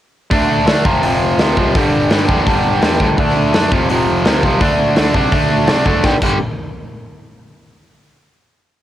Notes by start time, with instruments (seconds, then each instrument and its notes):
0.30 picked electric bass D2, overdriven electric guitar D3 A3 D4, kick, open hi-hat
0.50 picked electric bass D2
0.66 picked electric bass D2, overdriven electric guitar D3 A3 D4, snare, open hi-hat
0.84 picked electric bass F1, overdriven electric guitar F2 C3 F3, kick
1.03 picked electric bass F1, overdriven electric guitar F2 C3 F3, open hi-hat
1.22 picked electric bass F1
1.39 picked electric bass D2, overdriven electric guitar F2 C3 F3, snare, open hi-hat
1.57 picked electric bass C2, overdriven electric guitar F2 C3 F3, kick
1.75 picked electric bass G1, overdriven electric guitar G2 D3 G3, kick, open hi-hat
1.94 picked electric bass G1
2.10 picked electric bass G1, overdriven electric guitar G2 D3 G3, snare, open hi-hat
2.29 picked electric bass E2, overdriven electric guitar G2 D3 G3, kick
2.47 picked electric bass G1, overdriven electric guitar G2 D3 G3, kick, open hi-hat
2.65 picked electric bass G1
2.82 picked electric bass E2, overdriven electric guitar G2 D3 G3, snare, open hi-hat
3.00 picked electric bass D2, overdriven electric guitar G2 D3 G3, kick
3.18 picked electric bass D2, overdriven electric guitar D3 A3 D4, kick, open hi-hat
3.37 picked electric bass D2
3.54 picked electric bass F#2, overdriven electric guitar D3 A3 D4, snare, open hi-hat
3.71 picked electric bass F1, overdriven electric guitar F2 C3 F3, kick
3.89 picked electric bass F1, overdriven electric guitar F2 C3 F3, open hi-hat
4.09 picked electric bass F1
4.25 picked electric bass D2, overdriven electric guitar F2 C3 F3, snare, open hi-hat
4.43 picked electric bass C2, overdriven electric guitar F2 C3 F3, kick
4.61 picked electric bass D2, overdriven electric guitar D3 A3 D4, kick, open hi-hat
4.80 picked electric bass D2
4.96 picked electric bass D2, overdriven electric guitar D3 A3 D4, snare, open hi-hat
5.15 picked electric bass C3, overdriven electric guitar D3 A3 D4, kick
5.32 picked electric bass D2, overdriven electric guitar D3 A3 D4, kick, open hi-hat
5.51 picked electric bass D2
5.67 picked electric bass C3, overdriven electric guitar D3 A3 D4, snare, open hi-hat
5.85 picked electric bass F#1, overdriven electric guitar D3 A3 D4, kick
6.04 picked electric bass G1, overdriven electric guitar G2 D3 G3, kick, snare
6.22 picked electric bass G1, overdriven electric guitar G2 D3 G3, kick, crash